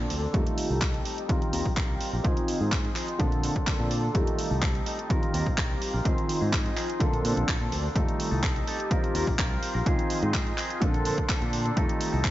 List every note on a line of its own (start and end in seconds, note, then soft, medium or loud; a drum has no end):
0.00 0.29 D3 medium
0.00 0.22 F3 medium
0.00 0.29 A#3 medium
0.00 0.23 C4 medium
0.00 0.30 C4 medium
0.00 0.22 D4 medium
0.00 0.21 A4 loud
0.00 0.30 A4 medium
0.00 0.33 A4 medium
0.00 0.33 D5 medium
0.00 0.31 C6 medium
0.10 0.25 D2 medium
0.10 open hi-hat loud
0.22 0.33 C4 medium
0.22 0.34 D4 medium
0.22 0.34 A4 medium
0.33 0.42 F2 loud
0.33 1.24 D#3 medium
0.33 0.70 G3 medium
0.33 1.24 G3 medium
0.33 1.25 A3 medium
0.33 0.70 C4 medium
0.33 0.69 D#4 medium
0.33 1.25 F4 medium
0.33 1.27 G4 medium
0.33 0.68 A4 loud
0.33 1.28 D#5 medium
0.33 1.28 A5 medium
0.33 kick loud
0.33 closed hi-hat medium
0.47 closed hi-hat medium
0.58 open hi-hat loud
0.70 0.99 C2 medium
0.70 0.80 C4 soft
0.70 0.81 D#4 medium
0.70 0.81 A4 medium
0.81 1.04 G3 medium
0.81 1.04 C4 medium
0.81 1.05 D#4 loud
0.81 1.06 A4 loud
0.81 kick loud
0.81 clap loud
0.81 closed hi-hat medium
0.94 closed hi-hat soft
1.05 1.27 G3 medium
1.05 1.28 C4 medium
1.05 1.29 D#4 medium
1.05 1.30 A4 medium
1.05 open hi-hat loud
1.18 closed hi-hat soft
1.28 2.20 D#3 medium
1.28 1.41 G3 medium
1.28 2.20 G3 medium
1.28 1.42 C4 medium
1.28 2.20 C4 medium
1.28 1.41 F4 medium
1.28 2.20 F4 medium
1.28 2.23 G4 medium
1.28 1.40 A#4 loud
1.28 2.23 F5 medium
1.28 2.23 C6 medium
1.28 kick loud
1.28 closed hi-hat medium
1.41 1.52 C4 medium
1.41 1.53 F4 medium
1.41 1.53 A#4 medium
1.41 closed hi-hat soft
1.52 1.61 D#2 medium
1.52 1.65 G3 medium
1.52 1.66 C4 medium
1.52 1.65 F4 medium
1.52 1.64 A#4 medium
1.52 open hi-hat loud
1.65 1.90 A#1 loud
1.65 1.76 C4 soft
1.65 1.76 F4 medium
1.65 1.77 A#4 medium
1.65 kick medium
1.77 2.13 G3 medium
1.77 2.13 C4 medium
1.77 2.13 F4 loud
1.77 2.12 A#4 loud
1.77 kick loud
1.77 clap loud
1.77 closed hi-hat medium
1.90 1.96 C2 medium
2.01 muted fingered electric bass stroke soft
2.01 open hi-hat loud
2.13 2.20 A#1 medium
2.13 2.24 C4 medium
2.13 2.25 F4 medium
2.13 2.24 A#4 medium
2.23 2.32 C#2 loud
2.23 3.15 D#3 medium
2.23 2.61 F3 medium
2.23 3.15 C4 medium
2.23 2.61 C4 medium
2.23 2.60 D#4 loud
2.23 3.19 F4 medium
2.23 3.16 F4 medium
2.23 2.59 G#4 loud
2.23 3.19 D#5 medium
2.23 4.13 C6 loud
2.23 kick loud
2.23 closed hi-hat medium
2.37 closed hi-hat soft
2.48 open hi-hat loud
2.60 2.89 G#2 loud
2.60 2.71 C4 medium
2.60 2.72 D#4 medium
2.60 2.72 G#4 medium
2.72 2.94 F3 medium
2.72 2.95 C4 medium
2.72 2.96 D#4 medium
2.72 2.97 G#4 medium
2.72 kick loud
2.72 clap loud
2.72 closed hi-hat medium
2.85 closed hi-hat soft
2.96 3.08 F3 medium
2.96 3.09 C4 medium
2.96 3.08 D#4 medium
2.96 3.07 G#4 medium
2.96 clap medium
2.96 open hi-hat loud
3.08 3.19 C4 soft
3.08 3.20 D#4 medium
3.08 3.20 G#4 medium
3.08 closed hi-hat soft
3.19 3.48 A#1 medium
3.19 4.10 D3 medium
3.19 3.32 F3 medium
3.19 4.10 A#3 medium
3.19 3.32 C4 medium
3.19 4.11 C4 medium
3.19 3.31 D4 medium
3.19 4.14 A4 medium
3.19 4.11 A4 medium
3.19 3.30 A4 medium
3.19 4.14 D5 medium
3.19 kick loud
3.19 closed hi-hat medium
3.32 3.43 C4 medium
3.32 3.43 D4 medium
3.32 3.43 A4 medium
3.32 closed hi-hat soft
3.43 3.56 F3 medium
3.43 3.56 C4 medium
3.43 3.55 D4 medium
3.43 3.54 A4 medium
3.43 open hi-hat loud
3.56 3.66 C4 medium
3.56 3.67 D4 medium
3.56 3.67 A4 medium
3.56 kick medium
3.56 closed hi-hat soft
3.67 4.03 F3 medium
3.67 4.04 C4 medium
3.67 4.03 D4 loud
3.67 4.02 A4 loud
3.67 kick loud
3.67 clap loud
3.67 closed hi-hat medium
3.80 4.08 A#2 medium
3.91 open hi-hat loud
4.03 4.14 C4 soft
4.03 4.15 D4 medium
4.03 4.14 A4 medium
4.14 4.23 F2 loud
4.14 5.05 D#3 medium
4.14 4.51 G3 medium
4.14 5.05 G3 medium
4.14 5.06 A3 medium
4.14 4.51 C4 medium
4.14 4.51 D#4 loud
4.14 5.06 F4 medium
4.14 5.09 G4 medium
4.14 4.49 A4 loud
4.14 5.09 D#5 medium
4.14 5.09 A5 medium
4.14 kick loud
4.14 closed hi-hat medium
4.27 closed hi-hat medium
4.39 open hi-hat loud
4.51 4.79 C2 loud
4.51 4.61 C4 soft
4.51 4.62 D#4 medium
4.51 4.62 A4 medium
4.62 4.85 G3 medium
4.62 4.85 C4 medium
4.62 4.86 D#4 medium
4.62 4.87 A4 loud
4.62 kick loud
4.62 clap loud
4.62 closed hi-hat medium
4.75 closed hi-hat soft
4.86 4.99 G3 medium
4.86 4.99 C4 medium
4.86 4.98 D#4 medium
4.86 4.97 A4 medium
4.86 open hi-hat loud
4.98 5.09 C4 soft
4.98 5.10 D#4 medium
4.98 5.10 A4 medium
4.98 closed hi-hat soft
5.09 6.00 D#3 medium
5.09 5.22 G3 medium
5.09 6.01 G3 medium
5.09 6.01 C4 medium
5.09 5.23 C4 medium
5.09 5.22 F4 medium
5.09 6.01 F4 medium
5.09 6.04 G4 medium
5.09 5.21 A#4 loud
5.09 6.04 F5 medium
5.09 7.93 C6 medium
5.09 kick loud
5.09 closed hi-hat medium
5.22 5.33 C4 medium
5.22 5.34 F4 medium
5.22 5.34 A#4 medium
5.22 closed hi-hat soft
5.33 5.42 D#2 medium
5.33 5.46 G3 medium
5.33 5.46 C4 medium
5.33 5.46 F4 medium
5.33 5.44 A#4 medium
5.33 open hi-hat loud
5.46 5.70 A#1 loud
5.46 5.57 A#4 medium
5.46 kick medium
5.57 5.94 G3 medium
5.57 5.94 C4 medium
5.57 5.93 F4 loud
5.57 5.92 A#4 medium
5.57 kick loud
5.57 clap loud
5.57 closed hi-hat medium
5.70 5.77 C2 medium
5.82 muted fingered electric bass stroke soft
5.82 open hi-hat loud
5.93 6.01 A#1 medium
5.93 6.04 C4 medium
5.93 6.05 F4 medium
5.93 6.05 A#4 medium
6.05 6.13 C#2 loud
6.05 6.96 D#3 medium
6.05 6.42 F3 medium
6.05 6.96 C4 medium
6.05 6.42 C4 medium
6.05 6.41 D#4 medium
6.05 6.99 F4 medium
6.05 6.97 F4 medium
6.05 6.40 G#4 loud
6.05 6.99 D#5 medium
6.05 kick loud
6.05 closed hi-hat medium
6.18 closed hi-hat soft
6.29 open hi-hat loud
6.41 6.70 G#2 medium
6.41 6.52 C4 medium
6.41 6.52 D#4 medium
6.41 6.53 G#4 medium
6.52 6.75 F3 medium
6.52 6.76 C4 medium
6.52 6.76 D#4 loud
6.52 6.77 G#4 medium
6.52 kick loud
6.52 clap loud
6.52 closed hi-hat medium
6.66 closed hi-hat soft
6.76 6.89 F3 medium
6.76 6.89 C4 medium
6.76 6.88 D#4 medium
6.76 6.87 G#4 medium
6.76 clap medium
6.76 open hi-hat medium
6.89 6.99 C4 soft
6.89 7.01 D#4 medium
6.89 7.00 G#4 medium
6.89 closed hi-hat soft
7.00 7.91 D3 medium
7.00 7.13 F3 medium
7.00 7.91 A#3 medium
7.00 7.13 C4 medium
7.00 7.91 C4 medium
7.00 7.12 D4 medium
7.00 7.95 A4 medium
7.00 7.92 A4 medium
7.00 7.11 A4 medium
7.00 7.95 D5 medium
7.00 kick loud
7.00 closed hi-hat medium
7.12 7.20 A#1 medium
7.12 7.23 C4 medium
7.12 7.24 D4 medium
7.12 7.24 A4 medium
7.12 closed hi-hat soft
7.24 7.32 A#2 medium
7.24 7.37 F3 medium
7.24 7.37 C4 medium
7.24 7.36 D4 medium
7.24 7.35 A4 medium
7.24 open hi-hat loud
7.36 7.44 A#1 loud
7.36 7.47 C4 soft
7.36 7.47 D4 medium
7.36 7.48 A4 medium
7.36 closed hi-hat soft
7.47 7.84 F3 medium
7.47 7.84 C4 loud
7.47 7.84 D4 medium
7.47 7.83 A4 loud
7.47 kick loud
7.47 clap loud
7.47 closed hi-hat medium
7.61 7.68 A#2 medium
7.72 7.87 D2 medium
7.72 open hi-hat loud
7.84 7.94 C4 soft
7.84 7.96 D4 medium
7.84 7.95 A4 medium
7.95 8.03 F2 loud
7.95 8.86 D#3 medium
7.95 8.32 G3 medium
7.95 8.86 G3 medium
7.95 8.87 A3 medium
7.95 8.32 C4 medium
7.95 8.31 D#4 medium
7.95 8.87 F4 medium
7.95 9.84 G4 medium
7.95 8.30 A4 medium
7.95 8.90 D#5 medium
7.95 8.90 A5 medium
7.95 kick loud
7.95 closed hi-hat medium
8.08 closed hi-hat medium
8.20 open hi-hat loud
8.31 8.60 C2 loud
8.31 8.42 C4 soft
8.31 8.42 D#4 medium
8.31 8.43 A4 medium
8.43 8.65 G3 medium
8.43 8.66 C4 loud
8.43 8.67 D#4 loud
8.43 8.67 A4 loud
8.43 kick loud
8.43 clap loud
8.43 closed hi-hat medium
8.56 closed hi-hat soft
8.66 8.79 G3 medium
8.66 8.79 C4 medium
8.66 8.78 D#4 medium
8.66 8.77 A4 medium
8.66 open hi-hat medium
8.79 8.90 C4 soft
8.79 8.91 D#4 medium
8.79 8.91 A4 medium
8.79 closed hi-hat medium
8.90 9.81 D#3 medium
8.90 9.03 G3 medium
8.90 9.82 G3 medium
8.90 9.04 C4 medium
8.90 9.82 C4 medium
8.90 9.03 F4 medium
8.90 9.82 F4 medium
8.90 9.02 A#4 medium
8.90 9.85 F5 medium
8.90 11.74 C6 loud
8.90 kick loud
8.90 closed hi-hat medium
9.03 9.14 C4 soft
9.03 9.14 F4 medium
9.03 9.15 A#4 medium
9.03 closed hi-hat soft
9.14 9.23 D#2 loud
9.14 9.27 G3 medium
9.14 9.27 C4 medium
9.14 9.26 F4 medium
9.14 9.25 A#4 medium
9.14 open hi-hat loud
9.26 9.51 A#1 loud
9.26 9.37 C4 medium
9.26 9.38 F4 medium
9.26 9.38 A#4 medium
9.26 kick medium
9.38 9.75 G3 medium
9.38 9.75 C4 loud
9.38 9.74 F4 medium
9.38 9.73 A#4 loud
9.38 kick loud
9.38 clap loud
9.38 closed hi-hat medium
9.51 9.58 C2 medium
9.62 muted fingered electric bass stroke soft
9.62 open hi-hat loud
9.74 9.82 A#1 medium
9.74 9.85 C4 soft
9.74 9.86 F4 medium
9.74 9.86 A#4 medium
9.86 9.94 C#2 loud
9.86 10.77 D#3 medium
9.86 10.22 F3 medium
9.86 10.77 C4 medium
9.86 10.23 C4 medium
9.86 10.22 D#4 loud
9.86 10.81 F4 medium
9.86 10.77 F4 medium
9.86 10.21 G#4 loud
9.86 10.81 D#5 medium
9.86 kick loud
9.86 closed hi-hat medium
9.99 closed hi-hat medium
10.10 open hi-hat loud
10.22 10.51 G#2 medium
10.22 10.33 C4 medium
10.22 10.33 D#4 medium
10.22 10.33 G#4 medium
10.22 closed hi-hat soft
10.33 10.56 F3 medium
10.33 10.57 C4 medium
10.33 10.57 D#4 medium
10.33 10.58 G#4 loud
10.33 kick loud
10.33 clap loud
10.33 closed hi-hat medium
10.47 closed hi-hat soft
10.57 10.80 F3 medium
10.57 10.81 C4 medium
10.57 10.82 D#4 medium
10.57 10.82 G#4 medium
10.57 clap medium
10.57 open hi-hat loud
10.70 closed hi-hat medium
10.81 11.10 A#1 medium
10.81 11.72 D3 medium
10.81 10.94 F3 medium
10.81 11.72 A#3 medium
10.81 11.72 C4 medium
10.81 10.94 C4 medium
10.81 10.93 D4 medium
10.81 11.76 A4 medium
10.81 11.73 A4 medium
10.81 10.92 A4 medium
10.81 11.76 D5 medium
10.81 kick loud
10.81 closed hi-hat medium
10.93 11.04 C4 soft
10.93 11.05 D4 medium
10.93 11.05 A4 medium
10.93 closed hi-hat soft
11.05 11.18 F3 medium
11.05 11.18 C4 medium
11.05 11.17 D4 medium
11.05 11.16 A4 medium
11.05 open hi-hat loud
11.17 11.28 C4 medium
11.17 11.29 D4 medium
11.17 11.29 A4 medium
11.17 kick medium
11.17 closed hi-hat soft
11.29 11.65 F3 medium
11.29 11.66 C4 medium
11.29 11.65 D4 medium
11.29 11.64 A4 loud
11.29 kick loud
11.29 clap loud
11.29 closed hi-hat medium
11.42 11.70 A#2 medium
11.42 closed hi-hat soft
11.53 open hi-hat loud
11.65 11.76 C4 medium
11.65 11.77 D4 medium
11.65 11.77 A4 medium
11.65 closed hi-hat soft
11.76 11.85 F2 medium
11.76 12.31 D#3 medium
11.76 12.31 G3 medium
11.76 12.13 G3 medium
11.76 12.31 A3 medium
11.76 12.13 C4 loud
11.76 12.13 D#4 loud
11.76 12.31 F4 medium
11.76 12.31 G4 medium
11.76 12.11 A4 loud
11.76 12.31 D#5 medium
11.76 12.31 A5 medium
11.76 kick loud
11.76 closed hi-hat medium
11.76 tambourine medium
11.89 closed hi-hat medium
11.89 tambourine soft
12.01 open hi-hat loud
12.13 12.31 C2 medium
12.13 12.23 C4 medium
12.13 12.24 D#4 medium
12.13 12.24 A4 medium
12.13 tambourine medium
12.24 12.31 G3 medium
12.24 12.31 C4 medium
12.24 12.31 D#4 loud
12.24 12.31 A4 loud
12.24 kick loud
12.24 clap loud
12.24 closed hi-hat medium